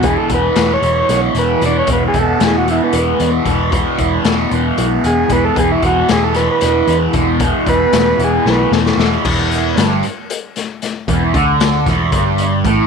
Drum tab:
CC |--------------|--------------|--------------|--------------|
HH |x-x-x-x-x-x-x-|x-x-x-x-x-x-x-|x-x-x-x-x-x-x-|x-x-x-x-x-x-x-|
SD |----o---o-----|----o---------|----o---------|----o-o-o-----|
BD |o-o-----------|o-o---------o-|o-o---------o-|o-o---------o-|

CC |--------------|x-------------|--------------|
HH |x-x-x-x-------|--x-x-x-x-x-x-|x-x-x-x-x-x-x-|
SD |----o---o-ooo-|----o-----o-o-|----o-o-------|
BD |o-o-----------|o-------------|o-o---o-o---o-|